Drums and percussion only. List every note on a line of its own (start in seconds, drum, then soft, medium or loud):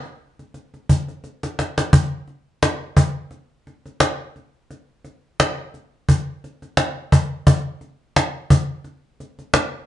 0.04 cajon slap soft
0.39 cajon slap soft
0.54 cajon slap soft
0.74 cajon slap soft
0.89 cajon bass medium
1.08 cajon slap soft
1.24 cajon slap soft
1.43 cajon slap soft
1.59 cajon slap medium
1.78 cajon slap medium
1.93 cajon bass loud
2.27 cajon slap soft
2.63 cajon slap loud
2.97 cajon bass medium
3.31 cajon slap soft
3.67 cajon slap soft
3.86 cajon slap soft
4.00 cajon slap loud
4.36 cajon slap soft
4.71 cajon slap soft
5.05 cajon slap soft
5.40 cajon slap loud
5.74 cajon slap soft
6.09 cajon bass medium
6.44 cajon slap soft
6.62 cajon slap soft
6.77 cajon slap loud
7.12 cajon bass medium
7.47 cajon bass loud
7.81 cajon slap soft
8.16 cajon slap loud
8.50 cajon bass medium
8.84 cajon slap soft
9.20 cajon slap soft
9.39 cajon slap soft
9.54 cajon slap loud